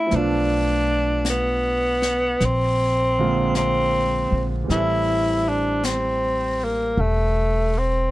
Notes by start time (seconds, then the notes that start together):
Already playing: A3 C4 D4 E4 G4 A4
0.07 F3 A3
0.11 B1 B3 D4, brush sweep, snare
0.16 D4 F4
1.25 brush sweep, snare, hi-hat pedal
1.30 B3
2.02 snare
2.41 A#1, brush sweep, snare
2.45 C4
3.18 D3 G#3 A#3 C4 F4
3.55 C4, brush sweep, snare, hi-hat pedal
4.32 A#1
4.64 E3 G3
4.69 A1 C4 E4 A4, brush sweep, snare
4.76 E4
5.48 D4
5.84 C4, brush sweep, snare, hi-hat pedal
6.64 A#3
6.97 E1 A3, brush sweep
7.78 C4